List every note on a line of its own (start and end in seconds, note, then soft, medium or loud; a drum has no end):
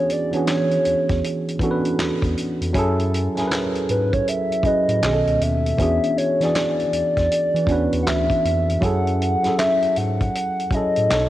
0.00 0.27 E3 medium
0.00 0.27 B3 medium
0.00 0.28 C#4 medium
0.00 0.28 D4 medium
0.00 0.29 F#4 medium
0.00 0.29 G#4 medium
0.00 0.14 C#5 medium
0.10 0.20 E3 soft
0.10 0.36 D5 medium
0.10 closed hi-hat medium
0.31 1.52 E3 medium
0.31 0.78 E3 medium
0.31 1.53 B3 medium
0.31 1.54 C#4 medium
0.31 1.54 D4 medium
0.31 1.85 C#5 medium
0.31 closed hi-hat soft
0.36 1.55 F#4 medium
0.36 1.55 G#4 medium
0.47 snare medium
0.47 clap medium
0.47 closed hi-hat medium
0.71 closed hi-hat soft
0.85 0.95 E2 soft
0.85 closed hi-hat medium
1.09 1.22 E2 medium
1.09 kick medium
1.09 snare soft
1.09 closed hi-hat soft
1.24 closed hi-hat medium
1.48 closed hi-hat soft
1.59 2.68 E3 medium
1.59 2.68 B3 medium
1.59 2.69 C#4 medium
1.59 2.69 D4 medium
1.59 2.70 F#4 medium
1.59 kick medium
1.59 closed hi-hat medium
1.64 1.71 A4 medium
1.71 2.73 B4 loud
1.85 closed hi-hat soft
1.99 2.09 E2 soft
1.99 snare loud
1.99 clap medium
1.99 closed hi-hat medium
2.22 2.35 E2 medium
2.22 kick medium
2.22 closed hi-hat soft
2.37 closed hi-hat medium
2.61 2.73 F2 medium
2.61 closed hi-hat soft
2.73 3.28 F#2 loud
2.73 3.30 F#3 loud
2.73 3.31 C#4 loud
2.73 3.32 E4 loud
2.73 kick loud
2.73 closed hi-hat medium
2.77 3.32 G#4 loud
2.77 3.33 A4 loud
2.99 closed hi-hat soft
3.14 closed hi-hat medium
3.35 3.43 G#2 soft
3.35 4.56 F#3 medium
3.35 4.57 C#4 medium
3.35 4.58 E4 medium
3.35 4.58 G#4 medium
3.35 snare soft
3.35 closed hi-hat soft
3.41 3.44 A#4 medium
3.47 4.62 B4 loud
3.47 closed hi-hat medium
3.52 snare medium
3.52 clap medium
3.75 closed hi-hat soft
3.89 4.22 G#2 medium
3.89 4.15 B4 medium
3.89 closed hi-hat medium
4.13 4.30 C#5 medium
4.13 kick medium
4.13 closed hi-hat soft
4.28 4.68 E5 medium
4.28 closed hi-hat medium
4.52 closed hi-hat soft
4.63 4.74 A2 soft
4.63 5.02 F#3 medium
4.63 5.02 C#4 medium
4.63 5.03 E4 medium
4.63 5.04 G#4 medium
4.63 5.44 D#5 medium
4.63 kick medium
4.63 closed hi-hat medium
4.68 5.04 B4 medium
4.89 5.01 A2 loud
4.89 closed hi-hat medium
5.01 5.23 B1 loud
5.01 5.74 B2 medium
5.01 5.75 D#3 medium
5.01 5.74 B3 medium
5.01 5.75 C#4 medium
5.01 snare loud
5.01 clap medium
5.01 closed hi-hat medium
5.06 5.12 G#4 medium
5.13 5.79 A4 medium
5.27 5.39 C#2 medium
5.27 closed hi-hat soft
5.41 5.73 D#2 medium
5.41 6.19 E5 medium
5.41 closed hi-hat medium
5.66 closed hi-hat soft
5.77 5.99 E2 loud
5.77 6.34 E3 medium
5.77 6.35 B3 medium
5.77 6.35 C#4 medium
5.77 6.36 D4 medium
5.77 6.36 F#4 medium
5.77 kick loud
5.77 closed hi-hat medium
5.82 6.37 G#4 loud
6.03 closed hi-hat soft
6.17 6.26 E3 soft
6.17 6.44 C#5 medium
6.17 closed hi-hat medium
6.40 7.61 E3 medium
6.40 6.85 E3 medium
6.40 7.61 B3 medium
6.40 7.62 D4 medium
6.40 7.62 E4 medium
6.40 7.63 F#4 medium
6.40 7.94 D5 loud
6.40 snare soft
6.40 closed hi-hat soft
6.45 7.63 G#4 medium
6.55 snare loud
6.55 clap medium
6.55 closed hi-hat medium
6.80 closed hi-hat soft
6.93 7.02 E2 soft
6.93 closed hi-hat medium
7.17 7.29 E2 medium
7.17 kick medium
7.17 snare soft
7.17 closed hi-hat soft
7.32 closed hi-hat medium
7.54 7.67 E3 loud
7.54 closed hi-hat soft
7.67 7.89 E2 medium
7.67 8.75 E3 medium
7.67 8.76 B3 medium
7.67 8.76 C#4 medium
7.67 8.77 D4 medium
7.67 kick medium
7.67 closed hi-hat medium
7.71 8.77 F#4 medium
7.71 8.78 B4 loud
7.93 8.05 E2 medium
7.93 closed hi-hat soft
8.02 8.09 F#5 medium
8.07 8.28 D2 medium
8.07 8.84 E5 loud
8.07 snare loud
8.07 clap medium
8.07 closed hi-hat medium
8.30 kick medium
8.30 closed hi-hat soft
8.45 8.78 F2 loud
8.45 closed hi-hat medium
8.70 closed hi-hat soft
8.81 9.36 F#2 loud
8.81 9.38 F#3 medium
8.81 9.38 C#4 medium
8.81 9.39 E4 medium
8.81 9.40 G#4 medium
8.81 9.21 F#5 loud
8.81 kick loud
8.81 closed hi-hat medium
8.85 9.40 A4 loud
9.07 closed hi-hat soft
9.22 9.56 F#5 loud
9.22 closed hi-hat medium
9.43 9.51 G#2 soft
9.43 10.64 F#3 medium
9.43 10.65 C#4 medium
9.43 10.65 E4 medium
9.43 10.66 G#4 medium
9.43 snare soft
9.43 closed hi-hat soft
9.47 10.66 A4 medium
9.58 9.99 E5 loud
9.58 snare loud
9.58 clap medium
9.58 closed hi-hat medium
9.82 closed hi-hat soft
9.96 10.30 G#2 medium
9.96 10.76 F#5 loud
9.96 closed hi-hat medium
10.20 kick medium
10.20 closed hi-hat soft
10.35 closed hi-hat medium
10.60 closed hi-hat soft
10.71 10.81 A2 soft
10.71 11.10 F#3 medium
10.71 11.10 C#4 medium
10.71 11.11 E4 medium
10.71 11.29 D#5 medium
10.71 kick medium
10.71 closed hi-hat medium
10.75 11.12 G#4 medium
10.75 11.12 A4 medium
10.96 11.09 A2 medium
10.96 closed hi-hat soft
11.09 11.29 B1 loud
11.09 11.29 B2 medium
11.09 11.29 B3 medium
11.09 11.29 D#4 medium
11.09 11.29 A4 medium
11.09 snare loud
11.09 clap medium
11.09 closed hi-hat medium
11.14 11.29 C#5 medium